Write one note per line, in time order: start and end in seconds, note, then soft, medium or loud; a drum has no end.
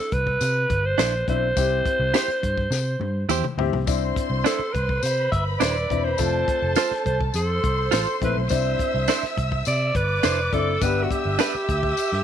0.00 0.14 A4 medium
0.12 0.36 C2 medium
0.12 0.87 B4 loud
0.12 kick medium
0.12 closed hi-hat medium
0.27 kick medium
0.41 0.65 C3 loud
0.41 closed hi-hat medium
0.41 tambourine medium
0.70 0.94 G1 medium
0.70 kick medium
0.70 closed hi-hat medium
0.86 1.28 C5 loud
0.98 1.22 A#1 medium
0.98 1.13 D4 medium
0.98 1.14 E4 medium
0.98 1.14 C5 medium
0.98 snare loud
0.98 closed hi-hat medium
0.98 tambourine medium
1.28 1.52 B1 medium
1.28 1.45 C4 medium
1.28 1.45 D4 medium
1.28 1.46 E4 medium
1.28 3.27 C5 loud
1.28 kick medium
1.28 closed hi-hat medium
1.56 1.80 C2 medium
1.56 2.26 C4 medium
1.56 2.26 E4 medium
1.56 2.26 G4 medium
1.56 kick loud
1.56 closed hi-hat medium
1.56 tambourine medium
1.85 kick medium
1.85 closed hi-hat medium
2.00 2.12 C2 loud
2.14 2.29 E4 medium
2.14 2.29 G4 loud
2.14 2.30 C5 loud
2.14 snare loud
2.14 closed hi-hat medium
2.14 tambourine medium
2.28 muted picked electric bass stroke soft
2.43 2.67 G2 medium
2.43 kick medium
2.43 closed hi-hat medium
2.58 kick medium
2.71 2.95 C3 loud
2.71 snare soft
2.71 tambourine medium
3.00 3.24 G2 medium
3.00 high tom medium
3.29 3.41 E2 medium
3.29 3.44 E4 medium
3.29 3.45 G4 medium
3.29 3.45 C5 medium
3.29 mid tom medium
3.29 tambourine medium
3.44 mid tom medium
3.58 3.70 D2 medium
3.58 3.76 C4 medium
3.58 3.76 E4 medium
3.58 3.76 G4 medium
3.58 floor tom medium
3.72 3.85 C2 medium
3.72 floor tom medium
3.86 4.11 C2 medium
3.86 4.56 C4 medium
3.86 4.57 D4 medium
3.86 4.58 E4 medium
3.86 5.01 C5 medium
3.86 5.00 C6 medium
3.86 kick loud
3.86 closed hi-hat medium
3.86 tambourine medium
4.16 kick medium
4.16 closed hi-hat medium
4.30 4.42 C2 medium
4.44 4.60 D4 medium
4.44 4.61 E4 medium
4.44 4.74 A4 medium
4.44 4.61 C5 medium
4.44 snare loud
4.44 closed hi-hat medium
4.44 tambourine medium
4.59 muted picked electric bass stroke soft
4.73 4.98 C2 medium
4.73 5.05 B4 medium
4.73 kick medium
4.73 closed hi-hat medium
4.89 kick medium
5.03 5.27 C3 medium
5.03 6.17 B4 medium
5.03 5.31 C5 loud
5.03 6.17 B5 medium
5.03 closed hi-hat medium
5.03 tambourine medium
5.32 5.56 G1 medium
5.32 5.45 E5 medium
5.32 kick medium
5.32 closed hi-hat medium
5.59 5.85 D#1 medium
5.59 5.76 D4 medium
5.59 5.76 E4 medium
5.59 5.76 C5 medium
5.59 6.06 D5 medium
5.59 snare loud
5.59 closed hi-hat medium
5.59 tambourine medium
5.90 6.14 E1 medium
5.90 6.07 C4 medium
5.90 6.08 D4 medium
5.90 6.08 E4 medium
5.90 kick medium
5.90 closed hi-hat medium
6.04 7.06 C5 medium
6.18 6.43 F1 medium
6.18 6.88 A3 medium
6.18 6.88 C4 medium
6.18 6.89 F4 medium
6.18 7.33 A4 medium
6.18 7.33 A5 medium
6.18 kick loud
6.18 closed hi-hat medium
6.18 tambourine medium
6.48 kick medium
6.48 closed hi-hat medium
6.62 6.74 F1 medium
6.76 6.92 F4 medium
6.76 6.92 A4 loud
6.76 6.92 C5 loud
6.76 snare loud
6.76 closed hi-hat medium
6.76 tambourine medium
6.91 muted picked electric bass stroke soft
6.91 snare soft
7.06 7.30 C2 medium
7.06 7.19 C5 medium
7.06 kick medium
7.06 closed hi-hat medium
7.21 kick medium
7.34 7.58 F2 loud
7.34 8.18 A4 medium
7.34 8.49 C5 medium
7.34 8.48 C6 medium
7.34 closed hi-hat medium
7.34 tambourine medium
7.64 7.88 C2 medium
7.64 kick loud
7.64 closed hi-hat medium
7.91 8.05 A1 medium
7.91 8.07 F4 medium
7.91 8.07 A4 medium
7.91 8.08 C5 medium
7.91 snare loud
7.91 closed hi-hat medium
7.91 tambourine medium
8.21 8.34 A#1 medium
8.21 8.39 A3 medium
8.21 8.39 C4 medium
8.21 8.39 E4 medium
8.21 8.37 B4 medium
8.21 kick medium
8.21 closed hi-hat medium
8.37 8.49 B1 medium
8.49 8.74 C2 medium
8.49 9.20 C4 medium
8.49 9.20 D4 medium
8.49 9.20 E4 medium
8.49 9.35 C5 medium
8.49 9.92 E5 medium
8.49 9.92 E6 medium
8.49 kick loud
8.49 closed hi-hat medium
8.49 tambourine medium
8.79 kick medium
8.79 closed hi-hat medium
8.94 9.06 C2 loud
9.08 9.23 D4 medium
9.08 9.24 E4 medium
9.08 9.24 C5 medium
9.08 snare loud
9.08 closed hi-hat medium
9.08 tambourine medium
9.23 muted picked electric bass stroke soft
9.23 snare soft
9.37 9.61 C2 medium
9.37 kick medium
9.37 closed hi-hat medium
9.52 kick medium
9.65 9.91 C3 loud
9.65 9.97 D5 loud
9.65 closed hi-hat medium
9.65 tambourine medium
9.93 10.19 G1 medium
9.93 10.55 B4 loud
9.93 10.79 D5 medium
9.93 10.79 D6 medium
9.93 kick medium
9.93 closed hi-hat medium
10.23 10.48 F1 medium
10.23 10.38 D4 medium
10.23 10.39 E4 medium
10.23 10.39 C5 medium
10.23 snare loud
10.23 closed hi-hat medium
10.23 tambourine medium
10.53 10.77 F#1 medium
10.53 10.70 C4 medium
10.53 10.71 D4 medium
10.53 10.71 E4 medium
10.53 10.83 A4 medium
10.53 kick medium
10.53 closed hi-hat medium
10.81 11.06 G1 medium
10.81 11.51 B3 medium
10.81 11.52 D4 medium
10.81 11.52 G4 medium
10.81 11.05 B4 loud
10.81 12.24 E5 medium
10.81 12.24 E6 medium
10.81 kick loud
10.81 closed hi-hat medium
10.81 tambourine medium
11.03 11.13 F#4 medium
11.11 12.24 G4 medium
11.11 kick medium
11.11 closed hi-hat medium
11.25 11.37 G1 medium
11.39 11.54 D4 medium
11.39 11.55 G4 loud
11.39 11.55 B4 loud
11.39 snare loud
11.39 closed hi-hat medium
11.39 tambourine medium
11.55 muted picked electric bass stroke soft
11.69 11.93 D2 medium
11.69 kick medium
11.69 closed hi-hat medium
11.83 kick medium
11.97 closed hi-hat medium
11.97 tambourine medium
12.12 12.24 G2 medium
12.12 snare soft